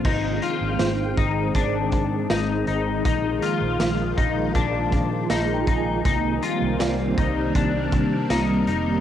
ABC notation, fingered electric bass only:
X:1
M:4/4
L:1/16
Q:1/4=80
K:Ablyd
V:1 name="Fingered electric bass" clef=bass
A,,,2 z A,,, A,,,2 A,,,2 A,,,2 A,,2 A,,,2 A,,,2 | B,,,2 z B,,, B,,,2 B,,,2 B,,,2 B,,2 B,,,2 B,,,2 | C,,2 z C,, C,,2 C,,2 C,,2 C,2 C,,2 F,,,2 |]